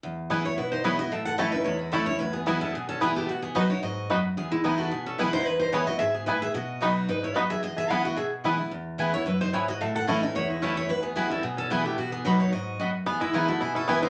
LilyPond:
<<
  \new Staff \with { instrumentName = "Steel-string acoustic guitar" } { \time 4/4 \key e \major \tempo 4 = 221 r4. cis''8 b'8 c''8 cis''8 dis''8 | e''8 fis''8 dis''8 b'8 cis''8 e'8 a'8 cis''8 | b'8 gis'8 fis'8 a'8 gis'8 a'8 gis'8 g'8 | fis'8 gis'8 b'8 cis''8 dis''4 r4 |
gis'8 e'8 dis'8 fis'8 gis'8 a'8 b'8 c''8 | b'8 c''8 cis''8 dis''8 e''8 gis'8 b'8 e''8 | dis''4 r4 b'8 cis''8 dis''8 e''8 | dis''8 e''8 fis''8 dis''8 e''8 r4. |
r4. cis''8 b'8 c''8 cis''8 dis''8 | e''8 fis''8 dis''8 b'8 cis''8 e'8 a'8 cis''8 | b'8 gis'8 fis'8 a'8 gis'8 a'8 gis'8 g'8 | fis'8 gis'8 b'8 cis''8 dis''4 r4 |
gis'8 e'8 dis'8 fis'8 gis'8 a'8 b'8 c''8 | }
  \new Staff \with { instrumentName = "Mandolin" } { \time 4/4 \key e \major r4 <b e' b' gis''>8 r4. <b e' b' gis''>8 r8 | r4 <a e' cis'' a''>8 r4. <a e' cis'' a''>8 r8 | r4 <b e' b' gis''>8 r4. <b e' b' gis''>8 r8 | r4 <b fis' dis'' b''>8 r4. <b fis' dis'' b''>8 r8 |
r4 <b e' b' gis''>8 r4. <b e' b' gis''>8 r8 | r4 <b e' b' gis''>8 r4. <b e' b' gis''>8 r8 | r4 <b fis' dis'' b''>8 r4. <b fis' dis'' b''>8 r8 | r4 <b e' b' gis''>8 r4. <b e' b' gis''>8 r8 |
r4 <b e' b' gis''>8 r4. <b e' b' gis''>8 r8 | r4 <a e' cis'' a''>8 r4. <a e' cis'' a''>8 r8 | r4 <b e' b' gis''>8 r4. <b e' b' gis''>8 r8 | r4 <b fis' dis'' b''>8 r4. <b fis' dis'' b''>8 r8 |
r4 <b e' b' gis''>8 r4. <b e' b' gis''>8 r8 | }
  \new Staff \with { instrumentName = "Five-string banjo" } { \time 4/4 \key e \major r4 <b e'>8 r4. <b e'>8 r8 | r4 <a cis' e'>8 r4. <a cis' e'>8 r8 | r4 <b e'>8 r4. <b e'>8 r8 | r4 <b dis' fis'>8 r4. <b dis' fis'>8 r8 |
r4 <b e'>8 r4. <b e'>8 r8 | r4 <b e'>8 r4. <b e'>8 r8 | r4 <b dis' fis'>8 r4. <b dis' fis'>8 r8 | r4 <b e'>8 r4. <b e'>8 r8 |
r1 | r1 | r1 | r1 |
b8 e'8 b8 e'8 e'8 e'8 b8 e'8 | }
  \new Staff \with { instrumentName = "Resonator guitar played with a steel bar" } { \time 4/4 \key e \major r4. e'8 e'8 dis'8 e'8 fis'8 | a'8 a'8 a'8 dis'8 e'8 gis8 cis'8 e'8 | e'8 b8 b8 cis'8 b8 cis'8 b8 a8 | b8 b8 dis'8 e'8 fis'4 r4 |
b8 gis8 gis8 a8 b8 cis'8 e'8 dis'8 | e'8 dis'8 e'8 fis'8 gis'8 b8 e'8 gis'8 | fis'4 r4 dis'8 e'8 fis'8 gis'8 | gis'8 gis'8 b'8 fis'8 gis'8 r4. |
r4. e'8 e'8 dis'8 e'8 fis'8 | a'8 a'8 a'8 dis'8 e'8 gis8 cis'8 e'8 | e'8 b8 b8 cis'8 b8 cis'8 b8 a8 | b8 b8 dis'8 e'8 fis'4 r4 |
b8 gis8 gis8 a8 b8 cis'8 e'8 dis'8 | }
  \new Staff \with { instrumentName = "Steel-string acoustic guitar" } { \time 4/4 \key e \major << { r4 <e gis b e'>8 <b e'>8 r4 <e gis b e'>8 <b e'>8 | r4 <e a cis' e'>8 <cis' e'>8 r4 <e a cis' e'>8 <cis' e'>8 | r4 <e gis b e'>8 <b e'>8 r4 <e gis b e'>4 | r4 <fis b dis' fis'>8 <dis' fis'>8 r2 |
r4 <e gis b e'>4 r4 <e gis b e'>8 <b e'>8 | r4 <e gis b e'>8 <b e'>8 r2 | r4 <fis b dis' fis'>4 r2 | r4 <e gis b e'>8 <b e'>8 r4 <e gis b e'>8 <b e'>8 |
r4 <e gis b e'>8 <b e'>8 r2 | r4 <e a cis' e'>8 <cis' e'>8 r4 <e a cis' e'>4 | r4 <e gis b e'>8 <b e'>8 r4 <e gis b e'>8 <b e'>8 | r4 <fis b dis' fis'>4 r2 |
r4 <e gis b e'>8 <b e'>8 r4 <e gis b e'>8 <b e'>8 | } \\ { e,2 b,2 | a,2 e,2 | e,2 b,2 | b,2 gis,4 fis,4 |
e,2 b,2 | e,2 gis,4 a,4 | b,2 gis,4 fis,4 | e,2 b,2 |
e,2 fis,4 gis,4 | a,2 e,2 | e,2 b,2 | b,2 gis,4 fis,4 |
e,2 b,2 | } >> }
>>